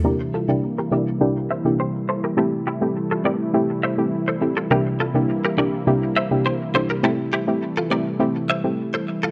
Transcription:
0.04 C3 E3 G3 A#3 D4 E4 G4 A#4
0.34 F4 A4
0.48 C3 A#3 D4 E4 G4
0.78 G4 A#4
0.91 C3 A#3 D4 E4 G4 A#4 D5
1.20 C3 A#3 D4 E4 G4
1.51 C5 E5
1.65 C3 A#3 D4 E4 G4
1.80 G4 C5
2.09 A4 C5
2.24 G4 A#4
2.37 C3 A3 C4 E4 G4 A4
2.67 E4 G4
2.81 A3 C4 E4 G4
3.11 F4 A4
3.24 A3 C4 E4 G4 A#4 D5
3.54 A3 C4 E4 G4
3.83 C5 E5
3.98 A3 C4 E4 G4
4.28 A4 C5
4.41 A3 C4 E4 G4
4.57 F4 A4
4.70 C3 A#3 D4 E4 G4 A#4
5.00 F4 A4
5.14 C3 A#3 D4 E4 G4
5.45 G4 A#4
5.57 C3 A#3 D4 E4 G4 A#4 D5
5.87 C3 A#3 D4 E4 G4
6.16 C5 E5
6.31 C3 A#3 D4 E4 G4
6.46 G4 C5
6.74 C3 A#3 D4 E4 G4 A4 C5
6.90 G4 A#4
7.03 E3 A3 C4 E4 G4 A4
7.33 E4 G4
7.47 A3 C4 E4 G4
7.77 F4 A4
7.90 A3 C4 E4 G4 A#4 D5
8.19 A3 C4 E4 G4
8.50 C5 E5
8.64 A3 C4 E4 G4
8.94 A4 C5
9.23 F4 A4

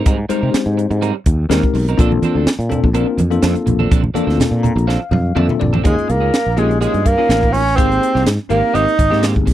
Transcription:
0.06 G#2 G3 C4 D#4 A#4, kick, closed hi-hat
0.18 muted clean electric guitar stroke
0.29 G3 G#3 C4 D#4 G4 A#4 C5, muted fretless electric bass stroke, closed hi-hat
0.41 C3 C4 D#4 A#4
0.54 muted clean electric guitar stroke, muted fretless electric bass stroke, snare, closed hi-hat
0.66 G#2
0.77 muted clean electric guitar stroke, closed hi-hat
0.91 G#2, muted clean electric guitar stroke, closed hi-hat
1.02 G3 C4 D#4 A#4, closed hi-hat
1.15 muted clean electric guitar stroke
1.26 D#2, muted clean electric guitar stroke, kick, closed hi-hat
1.49 D#2 G3 G#3 C4 D#4 G4 A#4, snare, closed hi-hat
1.63 muted clean electric guitar stroke, kick
1.74 B1, muted clean electric guitar stroke, open hi-hat
1.88 C4 D#4 A#4, closed hi-hat
1.98 A#1 F3 A#3 C4 D4 F4 A4, kick, closed hi-hat
2.12 muted clean electric guitar stroke, high conga
2.22 F3 C4 D4 A4, closed hi-hat, high conga
2.35 D2 C4 D4 A4
2.46 muted fretless electric bass stroke, muted clean electric guitar stroke, snare, closed hi-hat
2.59 A#2, closed hi-hat
2.69 A#3 C4 D4 F4 A4, muted clean electric guitar stroke, closed hi-hat, low conga
2.83 A#1, muted clean electric guitar stroke, kick
2.94 F3 A#3 C4 D4 F4 A4 A#4, closed hi-hat
3.08 muted clean electric guitar stroke
3.18 F2, muted clean electric guitar stroke, closed hi-hat, high conga
3.31 A#3 C4 D4 F4 A4, closed hi-hat
3.42 F2 F3 C4 D4 A4, snare, closed hi-hat
3.55 muted clean electric guitar stroke, muted fretless electric bass stroke, closed hi-hat
3.66 A#1, muted clean electric guitar stroke, closed hi-hat, low conga
3.79 C4 D4 A4, high conga
3.91 A#1 F3 C4 D4 A4, kick, closed hi-hat
4.04 muted clean electric guitar stroke, high conga
4.14 F3 A#3 C4 D4 F4 A4, muted fretless electric bass stroke, closed hi-hat, high conga
4.27 D2 C4 D4 A4, snare
4.38 muted fretless electric bass stroke, muted clean electric guitar stroke, snare, closed hi-hat, low conga
4.51 A#2
4.63 A#5, muted clean electric guitar stroke, closed hi-hat, low conga
4.76 A#1, muted clean electric guitar stroke, closed hi-hat
4.87 F3 C4 D4 A4 F5, snare
5.01 muted clean electric guitar stroke
5.11 F2 F5, muted clean electric guitar stroke, high tom, low conga
5.35 F2 F3 A#3 C4 D4 F4 A4 E5, mid tom
5.49 muted clean electric guitar stroke, muted fretless electric bass stroke, mid tom, high conga
5.60 A#1 D5, muted clean electric guitar stroke, floor tom, low conga
5.73 C4 D4 A4, floor tom, high conga
5.83 D#2 F3 G#3 A#3 C#4 D#4 F4 G#4, kick, closed hi-hat
5.96 muted clean electric guitar stroke, muted fretless electric bass stroke, closed hi-hat
6.08 C#2 A#3 A#4, muted clean electric guitar stroke, closed hi-hat
6.20 A#3 C#4 G#4
6.32 muted clean electric guitar stroke, snare, closed hi-hat
6.46 A#1
6.57 F3 G#3 A#3 C#4 D#4 F4 G4 G#4, closed hi-hat
6.71 muted clean electric guitar stroke, closed hi-hat
6.81 F3 G#3 A#3 C#4 G#4, closed hi-hat
6.94 G2, muted clean electric guitar stroke, closed hi-hat
7.05 A#3 A#4, muted clean electric guitar stroke, kick, closed hi-hat
7.18 A#3 C#4 D#4 F4 G#4 A#4
7.29 A1 F3 A#3 C#4 G#4, snare, closed hi-hat
7.42 muted clean electric guitar stroke, kick
7.53 C#4 C#5, muted clean electric guitar stroke, open hi-hat
7.67 snare
7.76 G#1 D#3 A#3 C4 D#4 G4 G#4 C5, kick, closed hi-hat
7.90 muted clean electric guitar stroke, closed hi-hat
8.01 muted clean electric guitar stroke, closed hi-hat
8.15 C2 A#3 C4 G4, snare
8.26 G#2, muted clean electric guitar stroke, snare, closed hi-hat
8.49 G#1 D#3 A#3 C4 D#4 G4 A#4, closed hi-hat
8.63 muted clean electric guitar stroke
8.73 G#1 D#3 A#3 C4 D#4 G4 D#5, closed hi-hat
8.87 muted clean electric guitar stroke, closed hi-hat
8.98 G#1, muted clean electric guitar stroke, kick, closed hi-hat
9.10 G#2 A#3 C4 D#4 G4 G#4, snare
9.22 D#3 A#3 C4 G4, snare, closed hi-hat
9.36 G#1, muted clean electric guitar stroke, kick
9.46 C2, muted clean electric guitar stroke, kick, open hi-hat

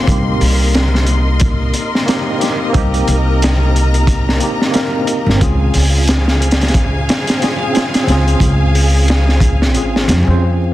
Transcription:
Already playing: C6
0.03 A#3 C4
0.07 C2 D#4 G4 A#4 D#5, kick, closed hi-hat
0.40 C2, open hi-hat
0.75 snare, closed hi-hat
0.95 snare
1.06 closed hi-hat
1.40 kick, closed hi-hat
1.74 closed hi-hat
1.95 snare
2.06 A#3 C4 D#4, snare, closed hi-hat
2.10 G4
2.38 A#3 C4 D#4, closed hi-hat
2.42 G4, snare
2.70 A#3 C4
2.74 C2 D#4 G4 A#5, kick, closed hi-hat
2.94 closed hi-hat
3.08 C2, closed hi-hat
3.42 snare, closed hi-hat
3.76 closed hi-hat
3.94 closed hi-hat
4.07 kick, closed hi-hat
4.29 snare
4.39 A#3 C4 D#4, closed hi-hat
4.43 G4
4.62 snare
4.71 A#3 C4 D#4, closed hi-hat
4.75 A#4, snare
5.07 closed hi-hat
5.26 G1, snare
5.36 C4 C#4
5.40 C#2 F4 G#4 F5 G#5, kick, closed hi-hat
5.44 G#4
5.74 C#2, open hi-hat
6.07 snare, closed hi-hat
6.28 snare
6.42 closed hi-hat
6.51 snare, closed hi-hat
6.61 snare, closed hi-hat
6.68 snare, closed hi-hat
6.74 kick, closed hi-hat
7.09 snare, closed hi-hat
7.27 snare, closed hi-hat
7.40 C4 C#4 F4, closed hi-hat
7.44 G#4, snare
7.73 C4 C#4 F4, closed hi-hat
7.77 G#4, snare
7.94 snare, closed hi-hat
8.04 C#2 C4 C#4
8.08 F4 G#4, snare, closed hi-hat
8.28 closed hi-hat
8.40 C#2, kick, closed hi-hat
8.75 open hi-hat
9.08 snare, closed hi-hat
9.29 snare
9.40 kick, closed hi-hat
9.62 snare
9.73 G#1 C4 C#4 F4, closed hi-hat
9.77 G#4
9.96 snare
10.08 F2, snare, closed hi-hat
10.25 F2 C4 C#4 F4
10.30 C5

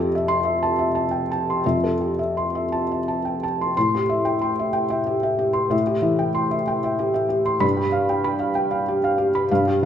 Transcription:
Already playing: F2 A4 E5
0.00 G4
0.15 E5
0.28 C6
0.45 E5
0.63 A5
0.79 E5
0.95 A5
1.11 G5
1.31 A5
1.50 C6
1.66 F2 E5
1.84 A4
2.01 G4
2.19 E5
2.37 C6
2.55 E5
2.72 A5
2.92 E5
3.08 A5
3.25 G5
3.43 A5
3.61 C6
3.77 A2 C6
3.95 G4
4.09 E5
4.25 G5
4.42 C6
4.59 E5
4.73 G5
4.90 E5
5.06 G4
5.23 E5
5.39 G4
5.53 C6
5.70 A2 E5
5.87 G4
6.02 E3 E5
6.19 G5
6.35 C6
6.51 E5
6.67 G5
6.84 E5
6.99 G4
7.14 E5
7.29 G4
7.46 C6
7.60 G2 B5
7.77 G4
7.92 F5
8.09 G5
8.24 B5
8.39 F5
8.55 G5
8.71 F5
8.88 G4
9.04 F5
9.18 G4
9.35 B5
9.51 G2 F5
9.67 G4

